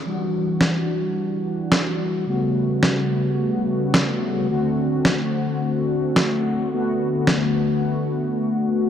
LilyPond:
<<
  \new Staff \with { instrumentName = "Analog polysynth" } { \time 4/4 \key e \minor \tempo 4 = 108 <e g d' fis'>1 | <cis g a b fis'>1 | <d a c' fis'>1 | <d a b fis'>1 | }
  \new DrumStaff \with { instrumentName = "Drums" } \drummode { \time 4/4 r4 sn4 r4 sn4 | r4 sn4 r4 sn4 | r4 sn4 r4 sn4 | r4 sn4 r4 r4 | }
>>